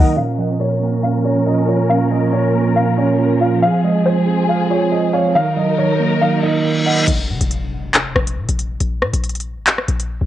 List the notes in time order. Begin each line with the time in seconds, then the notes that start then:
Already playing: D#3 F#3 A#3 D#4 A#4 D#5 F#5
0.07 D#2
0.17 A#2 F3 C#4 A#4 F5
0.38 F3 D#5
0.60 A#2 C#5
0.82 A#3
1.03 A#2 F5
1.25 C#4 C#5
1.46 A#2 D#5
1.68 F4 C#5
1.90 A#2 F5
2.11 F3 D#5
2.33 A#2 C#5
2.55 A#3
2.76 A#2 F5
2.98 C#4 C#5
3.19 A#2
3.41 F4 F5
3.62 F3 C4 G#4 F5
3.84 G#3 D#5
4.06 F3 C5
4.27 C4
4.49 F3 F5
4.70 F4 C#5
4.92 F3 D#5
5.13 C#5 F5
5.35 D#3 F#3 D#4 A#4 F5
5.57 F#3 D#5
5.78 D#3 C#5
6.00 A#3
6.21 D#3 F5, reverse cymbal
6.43 D#4 D#5
6.65 D#3
6.86 D#5 F#5
7.08 A#1, closed hi-hat, crash, impact
7.29 C#3
7.41 A#1, closed hi-hat
7.51 closed hi-hat
7.94 G#1, clap, closed hi-hat
8.16 A#1, cross-stick
8.27 closed hi-hat
8.37 A#2
8.49 A#1, closed hi-hat
8.59 closed hi-hat
8.80 A#1, closed hi-hat
9.02 A#2, cross-stick
9.13 A#1, closed hi-hat
9.24 closed hi-hat
9.29 closed hi-hat
9.35 closed hi-hat
9.40 closed hi-hat
9.56 G#1
9.67 clap, closed hi-hat
9.78 cross-stick
9.88 A#1, closed hi-hat
10.00 closed hi-hat
10.21 A#1